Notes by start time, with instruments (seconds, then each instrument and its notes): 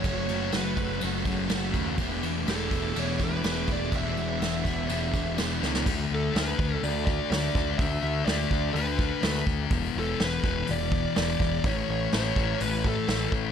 Already playing: string machine A3 F#5 E6
0.02 picked electric bass F#1, distorted electric guitar F#2 C#3 F#3, overdriven electric guitar F#3 A3, kick, ride
0.07 overdriven electric guitar C#4 F#4, lead electric guitar C#5
0.28 picked electric bass F#1, distorted electric guitar C#3 F#3, ride
0.52 picked electric bass F#1, distorted electric guitar F#2 C#3 F#3, overdriven electric guitar F#3 A3 C#4 F#4, lead electric guitar B4, snare, ride
0.77 picked electric bass F#1, distorted electric guitar C#3 F#3, kick, ride
1.00 picked electric bass F#1, distorted electric guitar F#2 C#3 F#3, overdriven electric guitar F#3 A3 C#4, ride
1.04 overdriven electric guitar F#4
1.25 picked electric bass F#1, distorted electric guitar C#3 F#3, kick, ride
1.48 picked electric bass F#1, distorted electric guitar F#2 C#3 F#3, overdriven electric guitar F#3 A3 C#4 F#4, snare, ride
1.72 picked electric bass D#2, distorted electric guitar C#3 F#3, kick, ride
1.97 picked electric bass E1, distorted electric guitar E2 B2 E3, overdriven electric guitar E3 B3 D4 G#4, string machine E5 D6, kick, ride
2.23 picked electric bass E1, distorted electric guitar B2 E3, ride
2.46 picked electric bass E1, distorted electric guitar E2 B2 E3, overdriven electric guitar E3 B3 D4, snare, ride
2.50 overdriven electric guitar G#4, lead electric guitar A4
2.70 distorted electric guitar B2 E3, kick, ride
2.93 picked electric bass E1, distorted electric guitar E2 B2 E3, overdriven electric guitar E3 B3, ride
2.97 overdriven electric guitar D4 G#4, lead electric guitar C#5
3.17 distorted electric guitar B2 E3, kick, ride
3.24 lead electric guitar B4
3.42 picked electric bass E1, distorted electric guitar E2 B2 E3, overdriven electric guitar E3 B3 D4 G#4, snare, ride
3.68 distorted electric guitar B2 E3, kick, ride
3.73 lead electric guitar D5
3.92 picked electric bass E1, distorted electric guitar E2 B2 E3, overdriven electric guitar E3 B3 D4 G#4, string machine F#5, kick, ride
3.96 lead electric guitar E5
4.16 picked electric bass E1, distorted electric guitar B2 E3, ride
4.40 picked electric bass E1, distorted electric guitar E2 B2 E3, overdriven electric guitar E3 B3 D4, snare, ride
4.45 overdriven electric guitar G#4
4.64 picked electric bass E1, distorted electric guitar B2 E3, kick, ride
4.87 picked electric bass E1, distorted electric guitar E2 B2 E3, overdriven electric guitar E3 B3, ride
4.91 overdriven electric guitar D4 G#4
5.13 picked electric bass E1, distorted electric guitar B2 E3, kick, ride
5.36 picked electric bass E1, distorted electric guitar E2 B2 E3, overdriven electric guitar E3 B3, snare, ride
5.40 overdriven electric guitar D4 G#4
5.60 picked electric bass C#2, distorted electric guitar B2 E3, snare
5.75 snare
5.85 picked electric bass D2, distorted electric guitar D3 A3 D4, kick, crash
6.11 picked electric bass D2, lead electric guitar A4
6.33 picked electric bass D2, distorted electric guitar D3 A3 D4, snare, open hi-hat
6.37 lead electric guitar B4
6.57 picked electric bass D2, distorted electric guitar A3 D4, kick
6.82 picked electric bass D2, distorted electric guitar D3 A3 D4, lead electric guitar D5, open hi-hat
7.05 lead electric guitar D5, kick
7.31 picked electric bass D2, distorted electric guitar D3 A3 D4, lead electric guitar D5, snare, open hi-hat
7.55 picked electric bass D2, kick
7.78 picked electric bass D2, distorted electric guitar D3 A3 D4, lead electric guitar E5, kick, open hi-hat
8.03 picked electric bass D2, lead electric guitar E5
8.25 picked electric bass D2, distorted electric guitar D3 A3, lead electric guitar D5, snare, open hi-hat
8.30 distorted electric guitar D4
8.51 picked electric bass D2, distorted electric guitar A3 D4, kick
8.73 picked electric bass D2, distorted electric guitar D3 A3 D4, lead electric guitar B4, open hi-hat
8.99 kick
9.21 picked electric bass D2, distorted electric guitar D3 A3 D4, snare, open hi-hat
9.47 picked electric bass D2, kick
9.70 picked electric bass E1, distorted electric guitar E2 B2 E3, kick, open hi-hat
9.95 picked electric bass E1, lead electric guitar A4
10.20 picked electric bass E1, distorted electric guitar E2 B2 E3, snare, open hi-hat
10.24 lead electric guitar B4
10.44 picked electric bass E1, distorted electric guitar B2 E3, kick
10.67 picked electric bass E1, distorted electric guitar E2 B2 E3, lead electric guitar D5, open hi-hat
10.92 kick
11.16 picked electric bass E1, distorted electric guitar E2 B2 E3, lead electric guitar D5, snare, open hi-hat
11.40 picked electric bass E1, kick
11.64 picked electric bass A1, distorted electric guitar A2 E3 A3, lead electric guitar C#5, kick, open hi-hat
11.89 picked electric bass A1, lead electric guitar C#5
12.12 picked electric bass A1, distorted electric guitar A2 E3 A3, lead electric guitar C#5, snare, open hi-hat
12.36 picked electric bass A1, distorted electric guitar E3 A3, kick
12.60 picked electric bass A1, distorted electric guitar A2 E3 A3, lead electric guitar B4, open hi-hat
12.84 lead electric guitar A4, kick
13.08 picked electric bass A1, distorted electric guitar A2 E3 A3, snare, open hi-hat
13.32 picked electric bass A1, kick